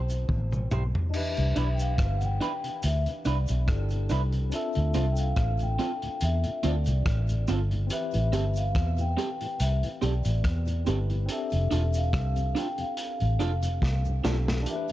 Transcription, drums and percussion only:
0.10 closed hi-hat, cabasa
0.29 kick, high tom
0.52 mid tom, cabasa
0.71 mid tom, cabasa
0.95 floor tom
1.14 crash, cabasa
1.37 closed hi-hat
1.56 closed hi-hat, cabasa
1.79 closed hi-hat, cabasa
1.98 kick, cross-stick, closed hi-hat
2.21 closed hi-hat, cabasa
2.41 closed hi-hat
2.64 closed hi-hat
2.82 closed hi-hat, cabasa
3.06 closed hi-hat
3.25 closed hi-hat, cabasa
3.48 closed hi-hat, cabasa
3.68 kick, cross-stick, closed hi-hat
3.90 closed hi-hat, cabasa
4.09 closed hi-hat, cabasa
4.32 closed hi-hat
4.52 closed hi-hat, cabasa
4.75 closed hi-hat
4.94 closed hi-hat, cabasa
5.16 closed hi-hat, cabasa
5.36 kick, cross-stick, closed hi-hat
5.59 closed hi-hat, cabasa
5.79 closed hi-hat
6.02 closed hi-hat
6.21 closed hi-hat, cabasa
6.44 closed hi-hat
6.63 closed hi-hat, cabasa
6.86 closed hi-hat, cabasa
7.06 kick, cross-stick, closed hi-hat
7.29 closed hi-hat, cabasa
7.47 closed hi-hat, cabasa
7.71 closed hi-hat
7.90 closed hi-hat, cabasa
8.14 closed hi-hat
8.33 closed hi-hat, cabasa
8.56 closed hi-hat, cabasa
8.75 kick, cross-stick, closed hi-hat
8.98 closed hi-hat, cabasa
9.18 closed hi-hat
9.41 closed hi-hat
9.60 closed hi-hat, cabasa
9.83 closed hi-hat
10.02 closed hi-hat, cabasa
10.25 closed hi-hat, cabasa
10.44 kick, cross-stick, closed hi-hat
10.67 closed hi-hat, cabasa
10.86 closed hi-hat, cabasa
11.10 closed hi-hat
11.29 closed hi-hat, cabasa
11.52 closed hi-hat
11.71 closed hi-hat, cabasa
11.94 closed hi-hat, cabasa
12.13 kick, cross-stick, closed hi-hat
12.36 closed hi-hat, cabasa
12.56 closed hi-hat
12.78 closed hi-hat
12.97 closed hi-hat, cabasa
13.20 closed hi-hat
13.40 closed hi-hat, cabasa
13.63 closed hi-hat, cabasa
13.82 kick, snare
14.05 cabasa
14.24 snare, cabasa
14.48 snare
14.66 closed hi-hat, cabasa

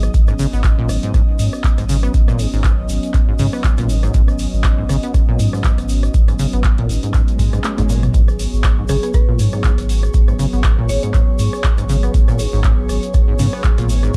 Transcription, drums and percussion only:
0.02 cross-stick, closed hi-hat, shaker
0.14 kick, closed hi-hat, shaker
0.28 cross-stick, shaker
0.39 open hi-hat, shaker
0.53 shaker
0.64 kick, cross-stick, clap, closed hi-hat, shaker
0.89 cross-stick, open hi-hat, shaker
1.03 closed hi-hat, shaker
1.14 kick, cross-stick, closed hi-hat, shaker
1.39 open hi-hat, shaker
1.53 cross-stick, shaker
1.64 kick, clap, closed hi-hat, shaker
1.78 cross-stick, closed hi-hat, shaker
1.89 open hi-hat, shaker
2.03 cross-stick, closed hi-hat, shaker
2.14 kick, closed hi-hat, shaker
2.28 cross-stick, shaker
2.39 open hi-hat, shaker
2.53 shaker
2.64 kick, cross-stick, clap, closed hi-hat, shaker
2.89 open hi-hat, shaker
3.03 closed hi-hat, shaker
3.14 kick, cross-stick, clap, closed hi-hat, shaker
3.39 open hi-hat, shaker
3.53 cross-stick, shaker
3.64 kick, clap, closed hi-hat, shaker
3.77 cross-stick, closed hi-hat, shaker
3.89 open hi-hat, shaker
4.03 cross-stick, closed hi-hat, shaker
4.14 kick, closed hi-hat, shaker
4.28 cross-stick, shaker
4.39 open hi-hat, shaker
4.53 shaker
4.64 kick, cross-stick, clap, closed hi-hat, shaker
4.89 cross-stick, open hi-hat, shaker
5.03 closed hi-hat, shaker
5.14 kick, cross-stick, closed hi-hat, shaker
5.39 open hi-hat, shaker
5.53 cross-stick, shaker
5.64 kick, clap, closed hi-hat, shaker
5.78 cross-stick, closed hi-hat, shaker
5.89 open hi-hat, shaker
6.03 cross-stick, closed hi-hat, shaker
6.14 kick, closed hi-hat, shaker
6.28 cross-stick, closed hi-hat, shaker
6.39 open hi-hat, shaker
6.53 closed hi-hat, shaker
6.64 kick, cross-stick, clap, closed hi-hat, shaker
6.78 closed hi-hat
6.89 open hi-hat, shaker
7.03 closed hi-hat, shaker
7.14 kick, cross-stick, clap, closed hi-hat, shaker
7.28 closed hi-hat, shaker
7.39 kick, open hi-hat, shaker
7.53 cross-stick, closed hi-hat, shaker
7.64 clap, closed hi-hat, high tom, shaker
7.78 cross-stick, closed hi-hat, high tom, shaker
7.89 open hi-hat, shaker
8.03 cross-stick, closed hi-hat, mid tom, shaker
8.14 kick, closed hi-hat, shaker
8.28 cross-stick, shaker
8.39 open hi-hat, shaker
8.53 shaker
8.64 kick, cross-stick, clap, closed hi-hat, shaker
8.88 cross-stick, open hi-hat, shaker
9.03 closed hi-hat, shaker
9.14 kick, cross-stick, closed hi-hat, shaker
9.39 open hi-hat, shaker
9.52 cross-stick, shaker
9.64 kick, clap, closed hi-hat, shaker
9.78 cross-stick, closed hi-hat, shaker
9.89 open hi-hat, shaker
10.03 cross-stick, shaker
10.14 kick, closed hi-hat, shaker
10.28 cross-stick, shaker
10.39 open hi-hat, shaker
10.53 shaker
10.64 kick, cross-stick, clap, closed hi-hat, shaker
10.89 open hi-hat, shaker
11.03 closed hi-hat, shaker
11.14 kick, cross-stick, clap, closed hi-hat, shaker
11.39 open hi-hat, shaker
11.53 cross-stick, shaker
11.64 kick, clap, closed hi-hat, shaker
11.78 cross-stick, closed hi-hat, shaker
11.89 open hi-hat, shaker
12.03 cross-stick, closed hi-hat, shaker
12.14 kick, closed hi-hat, shaker
12.28 cross-stick, shaker
12.39 open hi-hat, shaker
12.53 shaker
12.64 kick, cross-stick, clap, closed hi-hat, shaker
12.89 cross-stick, open hi-hat, shaker
13.03 closed hi-hat, shaker
13.14 kick, cross-stick, closed hi-hat, shaker
13.39 open hi-hat, shaker
13.53 cross-stick, shaker
13.64 kick, clap, closed hi-hat, shaker
13.78 cross-stick, closed hi-hat, shaker
13.89 open hi-hat, shaker
14.03 cross-stick, closed hi-hat, shaker

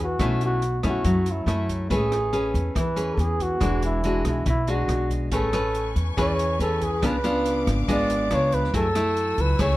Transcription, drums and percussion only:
0.19 kick, cross-stick, closed hi-hat
0.41 closed hi-hat
0.62 closed hi-hat
0.83 kick, cross-stick, closed hi-hat
1.05 kick, closed hi-hat
1.26 closed hi-hat
1.48 cross-stick, closed hi-hat
1.69 kick, closed hi-hat
1.90 kick, closed hi-hat
2.12 cross-stick, closed hi-hat
2.33 closed hi-hat
2.54 kick, closed hi-hat
2.76 kick, cross-stick, closed hi-hat
2.97 closed hi-hat
3.19 closed hi-hat
3.40 kick, closed hi-hat
3.61 kick, cross-stick, closed hi-hat
3.82 closed hi-hat
4.04 closed hi-hat
4.25 kick, cross-stick, closed hi-hat
4.46 kick, closed hi-hat
4.67 closed hi-hat
4.89 cross-stick, closed hi-hat
5.10 kick, closed hi-hat
5.32 kick, closed hi-hat
5.53 cross-stick, closed hi-hat
5.75 closed hi-hat
5.96 kick, closed hi-hat
6.17 kick, cross-stick, closed hi-hat
6.39 closed hi-hat
6.60 closed hi-hat
6.81 kick, closed hi-hat
7.03 kick, cross-stick, closed hi-hat
7.24 closed hi-hat
7.46 closed hi-hat
7.67 kick, cross-stick, closed hi-hat
7.88 kick, closed hi-hat
8.10 closed hi-hat
8.31 cross-stick, closed hi-hat
8.52 kick, closed hi-hat
8.74 kick, closed hi-hat
8.95 cross-stick, closed hi-hat
9.17 closed hi-hat
9.38 kick, closed hi-hat
9.59 kick, cross-stick, closed hi-hat

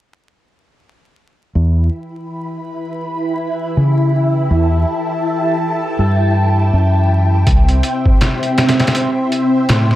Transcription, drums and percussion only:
7.47 kick, closed hi-hat
7.69 closed hi-hat
7.83 closed hi-hat
8.06 kick
8.21 snare, closed hi-hat
8.43 closed hi-hat
8.58 snare, closed hi-hat
8.68 snare, closed hi-hat
8.79 snare, closed hi-hat
8.87 snare, closed hi-hat
8.95 closed hi-hat
9.32 closed hi-hat
9.69 snare, closed hi-hat
9.91 snare

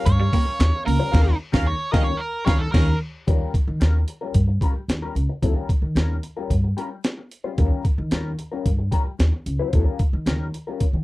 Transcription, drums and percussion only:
0.06 kick, closed hi-hat
0.33 kick, open hi-hat
0.60 snare, clap, closed hi-hat
0.88 open hi-hat
1.14 kick, snare, crash
1.53 kick, snare
1.94 kick, snare
2.47 kick, snare
2.74 kick, snare, crash
3.28 kick, closed hi-hat
3.54 kick, closed hi-hat
3.81 snare, closed hi-hat
4.08 closed hi-hat
4.34 kick, closed hi-hat
4.61 kick, closed hi-hat
4.89 snare, closed hi-hat
5.16 closed hi-hat
5.43 kick, closed hi-hat
5.69 kick, closed hi-hat
5.96 snare, closed hi-hat
6.23 closed hi-hat
6.50 kick, closed hi-hat
6.78 closed hi-hat
7.04 snare, closed hi-hat
7.31 closed hi-hat
7.58 kick, closed hi-hat
7.85 kick, closed hi-hat
8.11 snare, closed hi-hat
8.39 closed hi-hat
8.66 kick, closed hi-hat
8.92 kick, closed hi-hat
9.20 snare, closed hi-hat
9.46 closed hi-hat
9.73 kick, closed hi-hat
9.99 kick, closed hi-hat
10.26 snare, closed hi-hat
10.54 closed hi-hat
10.80 kick, closed hi-hat

